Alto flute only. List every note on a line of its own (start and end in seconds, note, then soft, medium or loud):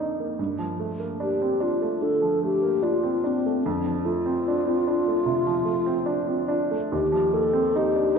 1.22 1.64 G4 medium
1.62 2.04 F4 medium
2.02 2.43 A4 medium
2.44 2.85 G4 medium
2.83 3.28 F4 medium
3.27 3.67 C4 medium
3.65 4.07 D4 medium
4.05 6.61 F4 medium
6.92 7.35 G4 medium
7.34 7.79 A4 medium
7.77 8.18 G4 medium